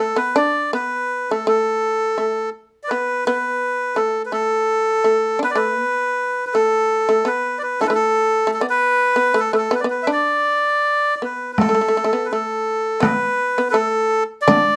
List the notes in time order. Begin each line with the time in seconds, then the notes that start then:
0.00 A3 A4
0.16 B3 B4
0.36 D4 D5
0.73 B3 B4
1.31 A3 A4
1.47 A3 A4
2.18 A3
2.83 D5
2.88 B3 B4
3.26 B3 B4
3.95 A3 A4
4.26 B4
4.32 A3 A4
5.04 A3
5.39 B3 D4
5.44 B4
5.51 D5
5.55 A3 B4
5.72 A#3
5.83 B3
6.47 B4
6.54 A3 A4
7.09 A3
7.25 B3 B4
7.58 D5
7.63 B4
7.81 D3 E3 A3 A4
7.87 F3 A3 B4
7.95 A4
8.47 A3
8.54 A4
8.60 B3 D5
8.70 B4
9.16 B3
9.34 A3
9.39 A4
9.52 A3 B4
9.57 A4
9.71 B3 B4
9.80 D5
9.84 B3
9.90 B4
10.03 E5
10.07 D4
10.12 D5
11.16 D5
11.22 B3 B4
11.53 B4
11.58 A3 A4, taiko rim, taiko high
11.69 A3
11.75 A3
11.81 A3
11.88 A3
11.97 A3
12.04 A3
12.13 B3
12.25 B4
12.32 A3 A4
13.00 B3 B4, taiko rim, taiko high
13.58 B3
13.70 A4 B4
13.74 A3
14.42 D5
14.48 D4, taiko rim, taiko high